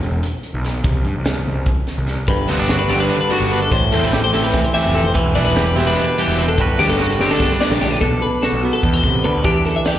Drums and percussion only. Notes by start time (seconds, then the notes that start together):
0.03 closed hi-hat
0.23 closed hi-hat
0.43 closed hi-hat
0.64 snare, closed hi-hat
0.84 kick, closed hi-hat
1.05 closed hi-hat
1.25 snare, closed hi-hat
1.46 closed hi-hat
1.66 kick, closed hi-hat
1.87 snare, closed hi-hat
2.07 snare, closed hi-hat
2.28 kick, closed hi-hat
2.49 closed hi-hat
2.69 snare, closed hi-hat
2.89 closed hi-hat
3.10 closed hi-hat
3.31 closed hi-hat
3.51 closed hi-hat
3.71 kick, closed hi-hat
3.92 closed hi-hat
4.13 snare, closed hi-hat
4.34 snare, closed hi-hat
4.54 kick, snare, closed hi-hat
4.74 closed hi-hat
4.94 closed hi-hat
5.15 kick, closed hi-hat
5.35 closed hi-hat
5.56 snare, closed hi-hat
5.77 closed hi-hat
5.97 closed hi-hat
6.18 closed hi-hat
6.38 closed hi-hat
6.58 kick, closed hi-hat
6.79 snare
6.90 snare
6.99 snare
7.10 snare
7.20 snare
7.31 snare
7.40 kick, snare
7.51 snare
7.61 snare
7.71 snare
7.81 snare
7.92 snare
8.01 kick, closed hi-hat
8.23 closed hi-hat
8.43 snare, closed hi-hat
8.63 closed hi-hat
8.83 kick, closed hi-hat
9.03 kick, closed hi-hat
9.24 closed hi-hat
9.44 kick, closed hi-hat
9.65 snare, closed hi-hat
9.85 snare, closed hi-hat